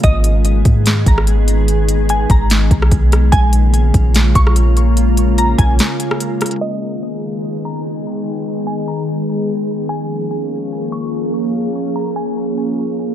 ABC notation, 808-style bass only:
X:1
M:4/4
L:1/8
Q:1/4=146
K:G#dor
V:1 name="808-style bass" clef=bass
G,,,3 G,,2 G,,,3- | G,,,3 G,,,2 B,,, B,,,2 | A,,,3 A,,,2 A,,,3- | A,,,3 A,,, z4 |
z8 | z8 | z8 | z8 |]